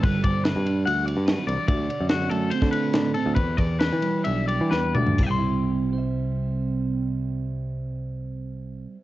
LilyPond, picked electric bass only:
\new Staff \with { instrumentName = "Picked electric bass" } { \clef bass \time 4/4 \key c \lydian \tempo 4 = 132 g,,8 g,,8. g,8. d,8. g,8 r16 c,16 r16 | d,8 r16 fis,8. fis,8 r16 d8. d8 r16 d,16 | e,8 e,8. e8. b,,8. e16 e,8 d,8 | c,1~ |
c,1 | }